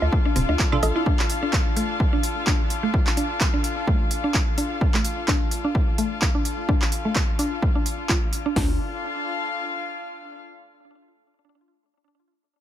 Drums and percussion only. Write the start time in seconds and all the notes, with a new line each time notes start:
0.02 low woodblock
0.12 kick
0.36 open hi-hat, mid tom
0.49 low woodblock
0.59 kick, clap
0.72 mid tom
0.83 open hi-hat, high woodblock, low woodblock
1.06 kick
1.19 clap
1.30 open hi-hat
1.53 kick, clap
1.77 open hi-hat
2.00 kick
2.23 open hi-hat
2.47 kick, clap
2.70 open hi-hat
2.94 kick
3.07 clap
3.17 open hi-hat
3.41 kick, clap
3.64 open hi-hat
3.87 kick
4.11 open hi-hat
4.34 kick, clap
4.58 open hi-hat
4.81 kick
4.94 clap
5.04 open hi-hat
5.28 kick, clap
5.51 open hi-hat
5.75 kick
5.98 open hi-hat
6.22 kick, clap
6.45 open hi-hat
6.69 kick
6.82 clap
6.92 open hi-hat
7.15 kick, clap
7.39 open hi-hat
7.62 kick
7.86 open hi-hat
8.09 kick, clap
8.33 open hi-hat
8.56 kick, snare, open hi-hat